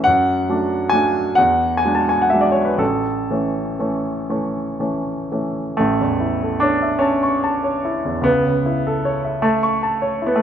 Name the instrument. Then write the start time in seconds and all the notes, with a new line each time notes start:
grand piano
0.04 F#2 F#5
0.49 F#3 A3 D4
0.90 F#3 A3 D4 G#5
1.35 E2 F#5
1.77 G#5
1.85 F#3 G#3 D4
1.95 A5
2.09 G#5
2.22 F#5
2.30 F#3 G#3 D4 E5
2.41 D5
2.52 C#5
2.65 B4
2.78 A1 A4
3.30 E3 A3 C#4
3.79 E3 A3 C#4
4.30 E3 A3 C#4
4.80 E3 A3 C#4
5.32 E3 A3 C#4
5.77 A1 A3
6.01 E2
6.20 E4
6.43 A4
6.60 D4 C#5
6.82 E5
6.99 C#4 A5
7.23 C#6
7.44 A5
7.64 C#5
7.85 E4
8.05 E2
8.21 C#2 B3
8.46 C#3
8.66 E4
8.87 A4
9.05 C#5
9.25 E5
9.42 A3 A5
9.63 C#6
9.83 A5
10.02 C#5
10.22 E4
10.27 B3
10.36 A3